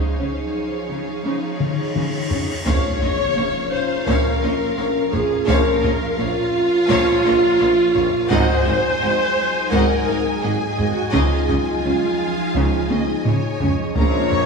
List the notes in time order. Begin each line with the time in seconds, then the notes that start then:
Already playing: F3 D#4 G#4 C#5 F5, cymbal swell
0.19 C#3 C#4
0.90 C#3 C#4
1.25 C#3 D#4
1.60 taiko mid
1.96 C#3 G#3, taiko mid
2.31 C#3 C#4, taiko low
2.66 A#1 A#2 F3 C#4 F4 A#4 C#5 F5, taiko, sub drop
3.02 A#1 A#2 C#5 D#5, taiko low
3.37 A#1 A#2 C#5 F5
3.72 C5
4.07 A#1 A#2 F3 C#4 A#4 C#5 F5, taiko
4.43 A#1 A#2 C#5 D#5
4.78 A#1 A#2 C#5 F5
5.12 A#1 A#2 G#4 C#5, taiko low
5.47 A#1 A#2 F3 C#4 F4 A#4 C#5 F5, taiko
5.83 A#1 A#2 C#5 D#5, taiko low
6.18 A#1 A#2 F4 C#5 F5
6.89 A#1 A#2 F3 C#4 C#5 F5, taiko
7.24 A#1 A#2 C#5 D#5
7.59 A#1 A#2 C#5 F5
7.94 A#1 A#2 C#5, taiko low
8.29 G#1 G#2 F#3 D#4 G#4 C5 D#5 F#5 G#5, taiko
8.65 G#1 G#2 D#5 F5, taiko low
9.01 G#1 G#2 D#5 F#5
9.71 G#1 G#2 F#3 D#4 A#4 D#5 F#5, taiko
10.08 G#1 G#2 D#5 F5
10.42 G#1 G#2 G#4 D#5 F#5
10.66 G#4
10.77 G#1 G#2 D#5, taiko low
10.89 F#4
11.12 C#2 C#3 F3 D#4 F4 D#5 F5, taiko
11.48 C#2 C#3 D#5, taiko low
11.83 C#2 C#3 F5
12.55 C#2 C#3 F3 D#4, taiko
12.89 C#2 C#3 D#5, taiko high
13.25 C#2 C#3 C#5, taiko low-mid
13.60 C#2 C#3, taiko low
13.95 A#1 A#2 F3 C#4 F4 A#4 C#5 F5 A#5, taiko
14.30 C#5 A#5 C#6, taiko low